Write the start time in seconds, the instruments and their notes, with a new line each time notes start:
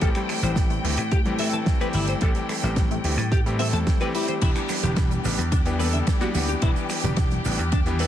Already playing: string section G5
0.01 slap bass A1, electric grand piano E3 G3 A3 C4 G4, synth arpeggio sound E3, clean electric guitar A4, kick, closed hi-hat
0.15 synth arpeggio sound G3, finger snap, closed hi-hat
0.29 synth arpeggio sound A3, finger snap, open hi-hat
0.42 slap bass A1, electric grand piano E3 G3 A3 C4 G4, synth arpeggio sound E3, clean electric guitar C5, closed hi-hat
0.56 synth arpeggio sound G3, kick, snare, closed hi-hat
0.70 synth arpeggio sound A3, closed hi-hat
0.84 slap bass D2, electric grand piano E3 G3 A3 C4 G4, synth arpeggio sound E3, open hi-hat
0.97 slap bass A2, synth arpeggio sound G3, closed hi-hat
1.11 synth arpeggio sound E3, clean electric guitar G4, kick, closed hi-hat
1.25 electric grand piano E3 G3 A3 C4 G4, synth arpeggio sound G3, closed hi-hat
1.39 electric grand piano E3 G3 A3 C4 A4, synth arpeggio sound A3, clean electric guitar E5, open hi-hat
1.52 synth arpeggio sound E3, clean electric guitar A5, closed hi-hat
1.66 synth arpeggio sound G3, kick, snare, closed hi-hat
1.80 electric grand piano E3 G3 A3 C4 G4, synth arpeggio sound A3, clean electric guitar B4, closed hi-hat
1.93 slap bass G1, electric grand piano E3 G3 A3 C4 G4, synth arpeggio sound E3, clean electric guitar E4, open hi-hat
2.08 synth arpeggio sound G3, clean electric guitar C5, closed hi-hat
2.21 slap bass A1, electric grand piano E3 G3 A3 C4 G4, synth arpeggio sound E3, clean electric guitar A4, kick, closed hi-hat
2.35 synth arpeggio sound G3, closed hi-hat
2.49 synth arpeggio sound A3, finger snap, open hi-hat
2.63 slap bass A1, electric grand piano E3 G3 A3 C4 G4, synth arpeggio sound E3, clean electric guitar C5, snare, closed hi-hat
2.76 synth arpeggio sound G3, kick, snare, closed hi-hat
2.91 synth arpeggio sound A3, closed hi-hat
3.04 slap bass D2, electric grand piano E3 G3 A3 C4 G4, synth arpeggio sound E3, open hi-hat
3.17 slap bass A2, synth arpeggio sound G3, closed hi-hat
3.32 synth arpeggio sound E3, clean electric guitar G4, kick, closed hi-hat
3.46 electric grand piano E3 G3 A3 C4 G4, synth arpeggio sound G3, closed hi-hat
3.59 electric grand piano E3 G3 A3 C4 A4, synth arpeggio sound C4, clean electric guitar E5, open hi-hat
3.73 slap bass E2, synth arpeggio sound A3, clean electric guitar A5, closed hi-hat
3.87 synth arpeggio sound G4, kick, snare, closed hi-hat
4.01 electric grand piano E3 G3 A3 C4 G4, synth arpeggio sound A3, clean electric guitar B4, closed hi-hat
4.14 electric grand piano E3 G3 A3 C4 G4, clean electric guitar E4, synth arpeggio sound G4, open hi-hat
4.28 synth arpeggio sound E3, clean electric guitar C5, closed hi-hat
4.42 slap bass E1, synth arpeggio sound D3, electric grand piano E3 G3 B3 D4 G4, clean electric guitar E4, string section G4, kick, closed hi-hat, ride, crash, shaker
4.56 synth arpeggio sound E3, finger snap, closed hi-hat, shaker
4.69 synth arpeggio sound G3, finger snap, open hi-hat, shaker
4.83 slap bass E1, synth arpeggio sound D3, electric grand piano E3 G3 B3 D4 G4, clean electric guitar G4, closed hi-hat, low conga, shaker
4.96 synth arpeggio sound E3, kick, snare, closed hi-hat, ride, shaker
5.11 synth arpeggio sound G3, closed hi-hat, shaker
5.24 slap bass A1, synth arpeggio sound D3, electric grand piano E3 G3 B3 D4 G4, open hi-hat, shaker
5.38 slap bass E2, synth arpeggio sound E3, closed hi-hat, shaker
5.52 synth arpeggio sound D3, clean electric guitar D4, kick, closed hi-hat, ride, shaker
5.65 electric grand piano E3 G3 B3 D4 G4, synth arpeggio sound E3, closed hi-hat, shaker
5.79 electric grand piano E3 G3 B3 D4 A4, synth arpeggio sound G3, clean electric guitar B4, open hi-hat, high conga, shaker
5.93 synth arpeggio sound D3, clean electric guitar E5, closed hi-hat, shaker
6.07 synth arpeggio sound E3, kick, snare, closed hi-hat, ride, shaker
6.20 electric grand piano E3 G3 B3 D4 G4, synth arpeggio sound G3, clean electric guitar F#4, closed hi-hat, high conga, shaker
6.34 slap bass D2, synth arpeggio sound D3, electric grand piano E3 G3 B3 D4 G4, clean electric guitar B3, open hi-hat, low conga, shaker
6.48 synth arpeggio sound E3, clean electric guitar G4, closed hi-hat, shaker
6.62 slap bass E1, synth arpeggio sound D3, electric grand piano E3 G3 B3 D4, clean electric guitar E4, kick, closed hi-hat, ride, shaker
6.76 synth arpeggio sound E3, closed hi-hat, shaker
6.89 synth arpeggio sound G3, finger snap, open hi-hat, shaker
7.03 slap bass E1, synth arpeggio sound D3, electric grand piano E3 G3 B3 D4 G4, clean electric guitar G4, snare, closed hi-hat, low conga, shaker
7.16 synth arpeggio sound E3, kick, snare, closed hi-hat, ride, shaker
7.31 synth arpeggio sound G3, closed hi-hat, shaker
7.45 slap bass A1, synth arpeggio sound D3, electric grand piano E3 G3 B3 D4 G4, open hi-hat, shaker
7.59 slap bass E2, synth arpeggio sound E3, closed hi-hat, shaker
7.72 synth arpeggio sound D3, clean electric guitar D4, kick, closed hi-hat, ride, shaker
7.86 electric grand piano E3 G3 B3 D4 G4, synth arpeggio sound E3, closed hi-hat, shaker
7.99 electric grand piano E3 G3 B3 D4 A4, synth arpeggio sound G3, clean electric guitar B4, open hi-hat, high conga, shaker